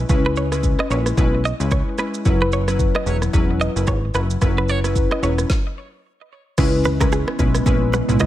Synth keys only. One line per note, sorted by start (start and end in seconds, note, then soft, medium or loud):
0.09 0.48 G#3 medium
0.09 0.48 C#4 medium
0.09 0.48 E4 medium
0.09 0.49 B4 medium
0.52 0.87 G#3 medium
0.52 0.88 C#4 medium
0.52 0.88 E4 medium
0.52 0.88 B4 medium
0.90 1.15 G#3 medium
0.90 1.16 C#4 medium
0.90 1.16 E4 medium
0.90 1.16 B4 medium
1.17 1.39 G#3 medium
1.17 1.39 C#4 medium
1.17 1.39 E4 medium
1.17 1.39 B4 loud
1.60 1.96 G#3 medium
1.60 1.96 C#4 medium
1.60 1.96 E4 medium
1.60 1.96 B4 medium
1.98 2.24 G#3 medium
1.98 2.24 C#4 medium
1.98 2.24 E4 medium
1.98 2.24 B4 medium
2.25 2.64 F#3 medium
2.25 2.64 C#4 medium
2.25 2.65 E4 medium
2.25 2.65 B4 medium
2.68 3.04 F#3 medium
2.68 3.04 C#4 medium
2.68 3.04 E4 medium
2.68 3.04 B4 medium
3.06 3.32 F#3 medium
3.06 3.32 C#4 medium
3.06 3.32 E4 medium
3.06 3.32 B4 medium
3.33 3.72 F#3 medium
3.33 3.72 C#4 medium
3.33 3.73 E4 medium
3.33 3.73 B4 loud
3.76 3.95 F#3 medium
3.76 3.95 C#4 medium
3.76 3.95 E4 medium
3.76 3.96 B4 medium
4.14 4.36 F#3 medium
4.14 4.36 C#4 medium
4.14 4.36 E4 medium
4.14 4.36 B4 medium
4.41 4.80 F#3 medium
4.41 4.81 C#4 medium
4.41 4.81 E4 medium
4.41 4.81 B4 medium
4.84 5.20 F#3 medium
4.84 5.20 C#4 medium
4.84 5.20 E4 medium
4.84 5.20 B4 medium
5.22 5.48 F#3 medium
5.22 5.48 C#4 medium
5.22 5.48 E4 medium
5.22 5.48 B4 medium
6.58 6.97 G#3 medium
6.58 6.97 C#4 medium
6.58 6.97 E4 medium
6.58 6.97 B4 medium
7.00 7.36 G#3 medium
7.00 7.36 C#4 medium
7.00 7.36 E4 medium
7.00 7.36 B4 medium
7.39 7.64 G#3 medium
7.39 7.64 C#4 medium
7.39 7.64 E4 medium
7.39 7.64 B4 medium
7.66 8.05 G#3 medium
7.66 8.05 C#4 medium
7.66 8.05 E4 medium
7.66 8.05 B4 medium
8.08 8.26 G#3 medium
8.08 8.26 C#4 medium
8.08 8.26 E4 medium
8.08 8.26 B4 medium